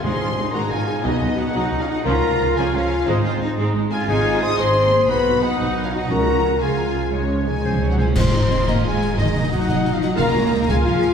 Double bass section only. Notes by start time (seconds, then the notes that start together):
0.03 G#1
0.21 G#1
0.37 G#1
0.54 G#1
0.71 G#1
1.05 B1
1.22 B1
1.37 B1
1.55 B1
1.72 B1
2.06 C#2
2.23 C#2
2.39 C#2
2.56 C#2
2.73 C#2
3.07 G#1
3.24 G#1
3.40 G#1
3.57 G#1
3.74 G#1
4.08 G#1
4.58 G#1
5.08 B1
5.60 B1
6.10 C#2
6.61 C#2
7.13 C#2
7.65 C#2
8.17 G#1
8.34 G#1
8.50 G#1
8.67 G#1
8.84 G#1
9.18 B1
9.36 B1
9.52 B1
9.69 B1
9.86 B1
10.19 C#2
10.36 C#2
10.52 C#2
10.69 C#2
10.86 C#2